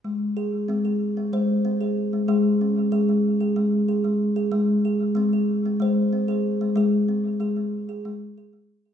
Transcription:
<<
  \new Staff \with { instrumentName = "Kalimba" } { \time 7/8 \key gis \major \tempo 4 = 94 gis8 gis'8 bis16 gis'8 bis16 bis'8 bis16 gis'8 gis16 | gis'8 cis'8 gis'16 gis8 gis'16 r8 gis'16 gis8 gis'16 | r8 gis'8 bis16 gis'8 bis16 bis'8 bis16 gis'8 gis16 | gis'8 bis8 gis'16 gis8 gis'16 r8 gis'16 gis8 gis'16 | }
  \new Staff \with { instrumentName = "Kalimba" } { \clef bass \time 7/8 \key gis \major r4 gis4 gis4. | gis4 gis4 gis4. | gis4 gis4 gis4. | gis4 gis4 gis4. | }
>>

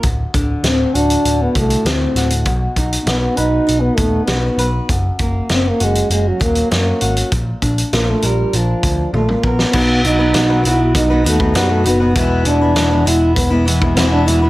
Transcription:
<<
  \new Staff \with { instrumentName = "French horn" } { \time 4/4 \key b \phrygian \tempo 4 = 99 r4 c'8 d'8. b16 a8 c'8. r16 | r4 b8 dis'8. b16 a8 b8. r16 | r4 c'16 ais16 gis8 gis16 fis16 ais8 ais8. r16 | r4 bes16 a16 g8 f4 a16 bes16 b8~ |
b8 dis'4 e'8 dis'8 a8 g16 a16 b8~ | b8 d'4 e'8 b8 r8 c'16 d'16 e'8 | }
  \new Staff \with { instrumentName = "Steel-string acoustic guitar" } { \time 4/4 \key b \phrygian d,8 d8 a8 fis'8 d8 a,8 a8 fis'8 | b,8 dis'8 fis'8 b'8 dis'8 b8 fis'8 b'8 | fis,8 ais8 cis'8 fis'8 ais8 fis8 cis'8 fis'8 | bes,8 d'8 f'8 bes'8 d'4 f'8 bes'8 |
<b, fis b dis' fis' b'>8 <b dis' fis' b'>16 <b dis' fis' b'>16 <b, fis b dis' fis' b'>16 <b fis' b'>16 <b fis' b'>8. <b dis' fis' b'>16 <b dis' fis' b'>16 <b dis' fis' b'>16 <b, fis b dis' fis' b'>8 <b dis' fis' b'>16 <b dis' fis' b'>16 | <e, b, e gis b e'>8 <e gis b e'>16 <e gis b e'>16 <e, b, e gis b e'>16 <e gis b e'>16 <e gis b e'>8. <e gis b e'>16 <e gis b e'>16 <e gis b e'>16 <e, b, e gis b e'>8 <e gis b e'>16 <e gis b e'>16 | }
  \new Staff \with { instrumentName = "Picked electric bass" } { \clef bass \time 4/4 \key b \phrygian d,,8 d,,8 d,,8 d,,8 d,,8 c,8 d,8 d,,8 | b,,8 b,,8 b,,8 b,,8 b,,8 dis,,8 b,,8 b,,8 | fis,,8 fis,,8 fis,,8 fis,,8 fis,,8 ees,,8 fis,8 gis,,8 | bes,,8 bes,,8 bes,,8 bes,,8 bes,,8 d,8 bes,,8 bes,,8 |
b,,8 b,,8 b,,8 b,,8 b,,8 dis,8 fis,8 fis,,8 | e,,8 e,,8 e,,8 e,,8 e,,4 e,,8 e,,8 | }
  \new DrumStaff \with { instrumentName = "Drums" } \drummode { \time 4/4 <hh bd>8 <hh bd>8 <hh sn>8 hh16 hh16 hh8 <hh bd>16 hh16 <hh sn>8 <hh sn>16 hh16 | <hh bd>8 <hh bd>16 hh16 <hh sn>8 hh8 hh8 <hh bd>8 <hh sn>8 hh8 | <hh bd>8 <hh bd>8 <hh sn>8 hh16 hh16 hh8 <hh bd>16 hh16 <hh sn>8 hh16 hh16 | <hh bd>8 <hh bd>16 hh16 <hh sn>8 hh8 hh8 <hh bd>8 tommh16 toml16 bd16 sn16 |
<cymc bd>8 hh8 <hh sn>8 hh8 <hh bd>8 hh16 bd16 <hh sn>8 hh8 | <hh bd>8 hh8 <hh sn>8 hh8 <hh bd>8 hh16 bd16 <hh sn>8 hh8 | }
>>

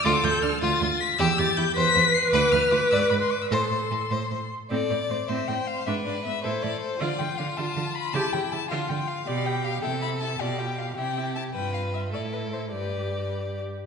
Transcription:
<<
  \new Staff \with { instrumentName = "Violin" } { \time 6/8 \key a \minor \tempo 4. = 105 d'''8 g'''8 f'''8 a'''4 b'''8 | e'''8 a'''8 g'''8 b'''4 c''''8 | d'''8 f'''8 d'''8 e'''16 d'''16 b''16 c'''16 d'''16 e'''16 | c'''2~ c'''8 r8 |
a'8 d''8 c''8 e''8 g''8 f''8 | e''8 d''8 e''8 c''8 d''8 c''8 | d''8 g''8 f''8 a''4 b''8 | a''8 g''8 a''8 f''8 g''8 f''8 |
\key g \mixolydian d''8 g''8 f''8 g''8 b''8 a''8 | d''8 g''8 f''8 g''4 a''8 | g''8 f''8 e''8 d''8 b'8 c''8 | b'4. r4. | }
  \new Staff \with { instrumentName = "Violin" } { \time 6/8 \key a \minor f'8 f'8 d'8 f'8 f'8 r8 | g'8 g'8 e'8 c''8 c''8 r8 | b'8 b'8 f'8 d''8 d''8 r8 | c''8 c''8 a'8 c''8 c''8 r8 |
d''4. c''4. | b'4. a'4. | f'2. | e'4. f'4. |
\key g \mixolydian g'4. a'4. | g'4. g'4. | b'4. a'4. | d''2~ d''16 r8. | }
  \new Staff \with { instrumentName = "Viola" } { \time 6/8 \key a \minor a'4. f'4. | g'4. b'4.~ | b'2. | a'2~ a'16 r8. |
c'8 c'8 a8 c'8 c'8 r8 | d'8 d'8 b8 e'8 e'8 r8 | f'8 f'8 d'8 f'8 f'8 r8 | g'8 g'8 e'8 f'8 f'8 r8 |
\key g \mixolydian g'8 g'8 g'8 e'8 e'8 e'8 | f'8 f'8 f'8 e'8 e'8 e'8 | f'4. e'4. | g'2~ g'8 r8 | }
  \new Staff \with { instrumentName = "Cello" } { \clef bass \time 6/8 \key a \minor d,8 d,8 d,8 d,8 d,8 r8 | e,8 e,8 e,8 e,8 e,8 r8 | d,8 d,8 d,8 gis,8 gis,8 r8 | a,8 a,8 a,8 a,8 a,8 r8 |
a,8 a,8 a,8 a,8 a,8 r8 | gis,8 gis,8 gis,8 a,8 a,8 r8 | d8 d8 d8 d8 d8 r8 | cis8 cis8 cis8 d8 d8 r8 |
\key g \mixolydian b,4. c4. | b,4. c4. | g,4. a,4. | g,2~ g,8 r8 | }
>>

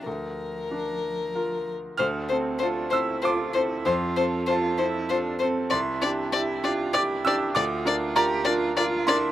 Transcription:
<<
  \new Staff \with { instrumentName = "Violin" } { \time 3/4 \key d \minor \tempo 4 = 97 bes'2~ bes'8 r8 | c''8 c''8 c''8 c''8 c''8 c''8 | c''8 c''8 c''8 c''8 c''8 c''8 | d''8 d''8 d''8 d''8 d''8 d''8 |
d''8 d''8 d''8 d''8 d''8 d''8 | }
  \new Staff \with { instrumentName = "Grand piano" } { \time 3/4 \key d \minor << { r2. | f'''4. e'''8 d'''4 | c'''4 a''4. r8 | c'''2 d'''8 e'''8 |
d'''4 bes''4. c'''8 | } \\ { d,4 d'4 <f' bes'>4 | d,8 <c' a'>8 <f' a'>8 <c' a'>8 <f' a'>8 <c' a'>8 | f,8 <c' a'>8 <f' a'>8 <c' a'>8 <f' a'>8 <c' a'>8 | c,8 <d' g'>8 <e' g'>8 <d' g'>8 <e' g'>8 <d' g'>8 |
d,8 <d' bes'>8 <f' bes'>8 <d' bes'>8 <f' bes'>8 <d' bes'>8 | } >> }
  \new Staff \with { instrumentName = "Cello" } { \time 3/4 \key d \minor f2~ f8 r8 | d'8 c'8 d'8 e'8 f'8 e'8 | f'4 f'8 e'8 d'8 c'8 | e'4 e'8 f'8 e'4 |
f'4 g'8 f'8 f'8 e'8 | }
>>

